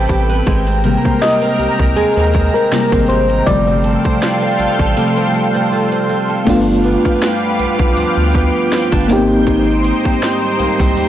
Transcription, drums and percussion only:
0.09 kick medium
0.09 closed hi-hat medium
0.47 kick loud
0.47 closed hi-hat medium
0.84 closed hi-hat medium
1.05 kick medium
1.22 snare loud
1.22 closed hi-hat medium
1.59 closed hi-hat medium
1.79 kick medium
1.97 closed hi-hat medium
2.34 kick medium
2.34 closed hi-hat medium
2.72 snare loud
2.72 closed hi-hat medium
2.92 kick loud
3.10 closed hi-hat medium
3.47 kick loud
3.47 closed hi-hat medium
3.84 closed hi-hat medium
4.05 kick medium
4.22 snare loud
4.22 closed hi-hat medium
4.59 closed hi-hat medium
4.79 kick medium
6.47 kick loud
6.47 closed hi-hat medium
6.47 crash medium
6.84 closed hi-hat medium
7.05 kick medium
7.22 snare loud
7.22 closed hi-hat medium
7.59 closed hi-hat medium
7.79 kick medium
7.97 closed hi-hat medium
8.34 kick medium
8.34 closed hi-hat medium
8.72 snare loud
8.72 closed hi-hat medium
8.92 kick loud
9.10 closed hi-hat medium
9.47 kick loud
9.47 closed hi-hat medium
9.84 closed hi-hat medium
10.05 kick medium
10.22 snare loud
10.22 closed hi-hat medium
10.60 closed hi-hat medium
10.79 kick medium
10.97 closed hi-hat medium

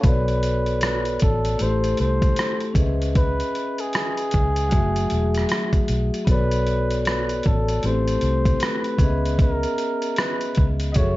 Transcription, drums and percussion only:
0.03 kick loud
0.03 closed hi-hat medium
0.28 closed hi-hat soft
0.43 closed hi-hat medium
0.66 closed hi-hat soft
0.81 cross-stick loud
0.81 closed hi-hat medium
1.05 closed hi-hat soft
1.20 kick medium
1.20 closed hi-hat medium
1.45 closed hi-hat medium
1.59 closed hi-hat medium
1.84 closed hi-hat soft
1.97 closed hi-hat medium
2.22 kick medium
2.22 closed hi-hat soft
2.36 cross-stick medium
2.36 closed hi-hat medium
2.60 closed hi-hat soft
2.75 kick medium
2.75 closed hi-hat medium
3.02 closed hi-hat soft
3.15 kick loud
3.15 closed hi-hat medium
3.40 closed hi-hat soft
3.55 closed hi-hat medium
3.78 closed hi-hat soft
3.93 cross-stick loud
3.93 closed hi-hat medium
4.17 closed hi-hat soft
4.31 kick medium
4.31 closed hi-hat medium
4.56 closed hi-hat medium
4.71 kick medium
4.71 closed hi-hat medium
4.96 closed hi-hat soft
5.10 closed hi-hat medium
5.34 cross-stick soft
5.34 closed hi-hat soft
5.49 cross-stick loud
5.49 closed hi-hat medium
5.73 kick medium
5.73 closed hi-hat soft
5.88 closed hi-hat medium
6.14 closed hi-hat soft
6.27 kick loud
6.27 closed hi-hat medium
6.51 closed hi-hat medium
6.67 closed hi-hat medium
6.91 closed hi-hat soft
7.05 cross-stick loud
7.05 closed hi-hat medium
7.29 closed hi-hat soft
7.43 kick medium
7.43 closed hi-hat medium
7.69 closed hi-hat medium
7.83 closed hi-hat medium
8.08 closed hi-hat soft
8.21 closed hi-hat medium
8.45 kick medium
8.45 closed hi-hat soft
8.60 cross-stick loud
8.60 closed hi-hat medium
8.84 closed hi-hat soft
8.98 kick medium
8.98 closed hi-hat medium
9.26 closed hi-hat soft
9.39 kick loud
9.39 closed hi-hat medium
9.63 closed hi-hat soft
9.78 closed hi-hat medium
10.02 closed hi-hat soft
10.16 cross-stick loud
10.16 closed hi-hat medium
10.41 closed hi-hat soft
10.55 kick medium
10.55 closed hi-hat medium
10.80 closed hi-hat medium
10.94 kick loud
10.94 closed hi-hat medium

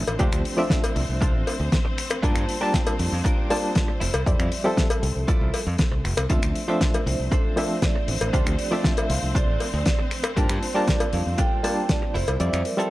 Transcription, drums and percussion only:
0.07 closed hi-hat medium
0.07 cowbell loud
0.19 kick loud
0.19 closed hi-hat medium
0.32 finger snap medium
0.32 closed hi-hat medium
0.45 open hi-hat loud
0.70 kick loud
0.70 snare loud
0.70 closed hi-hat medium
0.84 closed hi-hat medium
0.84 cowbell medium
0.96 open hi-hat loud
1.21 kick loud
1.21 closed hi-hat medium
1.47 open hi-hat loud
1.47 cowbell medium
1.72 kick loud
1.72 snare loud
1.72 closed hi-hat medium
1.98 finger snap medium
1.98 open hi-hat loud
2.10 finger snap medium
2.10 closed hi-hat medium
2.10 cowbell medium
2.23 kick loud
2.23 closed hi-hat medium
2.36 finger snap medium
2.36 closed hi-hat soft
2.49 open hi-hat loud
2.74 kick loud
2.74 snare loud
2.74 closed hi-hat medium
2.86 closed hi-hat medium
2.86 cowbell loud
2.99 open hi-hat loud
3.25 kick loud
3.25 closed hi-hat medium
3.50 open hi-hat loud
3.50 cowbell medium
3.75 kick loud
3.75 snare loud
3.75 closed hi-hat loud
4.01 open hi-hat loud
4.14 closed hi-hat medium
4.14 cowbell loud
4.26 kick loud
4.26 closed hi-hat medium
4.39 finger snap medium
4.39 closed hi-hat soft
4.52 open hi-hat loud
4.77 kick loud
4.77 snare loud
4.77 closed hi-hat medium
4.90 closed hi-hat medium
4.90 cowbell loud
5.03 open hi-hat loud
5.28 kick loud
5.28 closed hi-hat medium
5.54 open hi-hat loud
5.54 cowbell medium
5.79 kick loud
5.79 snare loud
5.79 closed hi-hat medium
6.05 finger snap medium
6.05 open hi-hat loud
6.17 finger snap medium
6.17 closed hi-hat medium
6.17 cowbell loud
6.30 kick loud
6.30 closed hi-hat medium
6.43 finger snap medium
6.43 closed hi-hat medium
6.56 open hi-hat loud
6.81 kick loud
6.81 snare loud
6.81 closed hi-hat medium
6.94 closed hi-hat medium
6.94 cowbell medium
7.07 open hi-hat loud
7.32 kick loud
7.32 closed hi-hat medium
7.57 open hi-hat loud
7.57 cowbell medium
7.82 kick loud
7.82 snare loud
7.82 closed hi-hat medium
8.08 open hi-hat loud
8.21 closed hi-hat medium
8.21 cowbell medium
8.33 kick loud
8.33 closed hi-hat medium
8.46 finger snap medium
8.46 closed hi-hat medium
8.59 open hi-hat loud
8.84 kick loud
8.84 snare loud
8.84 closed hi-hat medium
8.97 closed hi-hat medium
8.97 cowbell medium
9.10 open hi-hat loud
9.35 kick loud
9.35 closed hi-hat medium
9.60 open hi-hat loud
9.60 cowbell medium
9.86 kick loud
9.86 snare loud
9.86 closed hi-hat loud
10.11 finger snap medium
10.11 open hi-hat medium
10.24 finger snap medium
10.24 closed hi-hat medium
10.24 cowbell medium
10.37 kick loud
10.37 closed hi-hat medium
10.49 finger snap medium
10.49 closed hi-hat medium
10.63 open hi-hat loud
10.87 kick loud
10.87 snare loud
10.87 closed hi-hat medium
11.00 closed hi-hat medium
11.00 cowbell medium
11.13 open hi-hat loud
11.38 kick loud
11.38 closed hi-hat medium
11.64 open hi-hat loud
11.64 cowbell medium
11.89 kick loud
11.89 snare loud
11.89 closed hi-hat medium
12.15 open hi-hat loud
12.27 closed hi-hat medium
12.27 cowbell medium
12.40 closed hi-hat loud
12.53 finger snap medium
12.53 closed hi-hat medium
12.65 open hi-hat loud
12.80 closed hi-hat medium

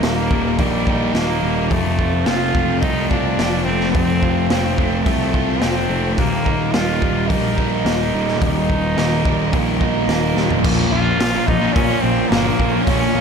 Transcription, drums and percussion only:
0.03 snare loud
0.03 open hi-hat medium
0.31 kick medium
0.59 kick loud
0.59 open hi-hat medium
0.87 kick medium
1.15 snare loud
1.15 open hi-hat medium
1.71 kick loud
1.71 open hi-hat medium
1.99 kick medium
2.26 snare loud
2.26 open hi-hat medium
2.55 kick medium
2.82 kick loud
2.82 open hi-hat medium
3.11 kick medium
3.39 snare loud
3.39 open hi-hat medium
3.81 snare soft
3.95 kick loud
3.95 open hi-hat medium
4.23 kick medium
4.50 snare loud
4.50 open hi-hat medium
4.78 kick medium
5.06 kick loud
5.06 open hi-hat medium
5.34 kick medium
5.62 snare loud
5.62 open hi-hat medium
6.18 kick loud
6.18 open hi-hat medium
6.46 kick medium
6.74 snare loud
6.74 open hi-hat medium
7.02 kick medium
7.30 kick loud
7.30 open hi-hat medium
7.58 kick medium
7.86 snare loud
7.86 open hi-hat medium
8.28 snare soft
8.42 kick loud
8.42 open hi-hat medium
8.70 kick medium
8.98 snare loud
8.98 open hi-hat medium
9.25 kick medium
9.53 kick loud
9.53 open hi-hat medium
9.81 kick medium
10.09 snare loud
10.09 open hi-hat medium
10.37 snare medium
10.51 floor tom medium
10.64 kick loud
10.64 crash loud
11.21 snare loud
11.21 open hi-hat medium
11.48 kick medium
11.76 kick loud
11.76 open hi-hat medium
12.32 snare loud
12.32 open hi-hat medium
12.60 kick medium
12.87 kick loud
12.87 open hi-hat medium

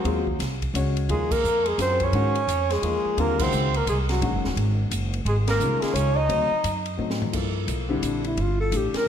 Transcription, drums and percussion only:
0.05 ride medium
0.27 kick medium
0.40 snare soft
0.40 hi-hat pedal medium
0.40 ride medium
0.62 kick medium
0.62 ride soft
0.75 hi-hat pedal medium
0.75 ride medium
0.97 ride soft
1.09 ride medium
1.31 kick medium
1.31 crash medium
1.44 hi-hat pedal medium
1.66 ride soft
1.79 snare soft
1.79 hi-hat pedal medium
1.79 ride medium
2.00 kick medium
2.00 ride soft
2.13 ride medium
2.35 ride soft
2.49 hi-hat pedal medium
2.49 ride medium
2.70 snare soft
2.70 ride medium
2.83 ride medium
3.18 ride medium
3.39 kick medium
3.39 crash medium
3.52 hi-hat pedal medium
3.74 ride soft
3.87 hi-hat pedal medium
3.87 ride medium
4.09 snare soft
4.09 ride soft
4.22 ride medium
4.45 snare medium
4.57 ride medium
4.91 hi-hat pedal medium
4.91 ride medium
5.14 ride soft
5.26 ride medium
5.48 snare medium
5.48 ride medium
5.60 hi-hat pedal medium
5.82 snare soft
5.82 ride soft
5.96 hi-hat pedal medium
5.96 ride medium
6.30 ride medium
6.64 hi-hat pedal medium
6.64 ride medium
6.86 ride soft
7.10 snare medium
7.22 floor tom medium
7.33 kick medium
7.33 crash medium
7.68 hi-hat pedal medium
7.68 ride medium
8.03 hi-hat pedal medium
8.03 ride medium
8.24 ride soft
8.37 ride medium
8.72 hi-hat pedal medium
8.72 ride medium
8.94 snare medium
8.94 ride soft

